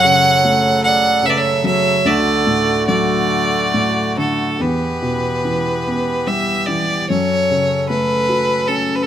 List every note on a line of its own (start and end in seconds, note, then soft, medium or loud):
0.00 2.00 F#2 medium
0.00 1.99 C#3 medium
0.00 2.02 F#3 medium
0.00 2.02 A4 medium
0.00 0.85 C#5 loud
0.00 0.83 F#5 loud
0.04 1.21 C#3 medium
0.45 2.00 A3 medium
0.84 1.26 D5 medium
0.84 1.27 F#5 medium
1.23 2.02 C#3 soft
1.23 1.29 C#5 medium
1.23 1.31 E5 medium
1.28 1.39 B4 medium
1.28 1.39 D5 medium
1.37 1.64 C#5 medium
1.37 1.64 E5 medium
1.64 2.03 F#3 soft
1.64 2.09 C#5 medium
1.64 2.08 E5 medium
2.05 4.56 D2 medium
2.05 4.57 D3 medium
2.05 4.57 A3 medium
2.05 4.58 F#4 medium
2.05 2.88 A4 medium
2.05 2.87 D5 medium
2.47 3.72 A2 soft
2.87 4.57 F#3 soft
2.87 4.14 A4 medium
2.87 4.13 D5 medium
3.74 4.58 A2 soft
4.17 4.59 D3 soft
4.17 4.62 A4 medium
4.58 7.05 E2 medium
4.58 7.06 E3 medium
4.58 7.06 B3 medium
4.58 7.05 G4 medium
4.58 6.28 B4 medium
5.02 6.64 B2 soft
5.45 6.67 E3 soft
5.87 7.06 B3 soft
6.27 7.06 G3 soft
6.27 6.68 E5 medium
6.66 7.08 E3 soft
6.66 7.08 D5 medium
7.09 9.07 F#2 medium
7.09 9.07 F#3 medium
7.09 9.07 C#4 medium
7.09 9.07 A4 medium
7.09 7.86 C#5 medium
7.51 9.05 C#3 soft
7.89 9.07 A3 soft
7.89 8.69 B4 medium
8.29 9.07 F#4 soft
8.67 9.07 C#4 medium
8.67 8.97 A4 medium
8.96 9.04 B4 medium
9.03 9.07 A4 medium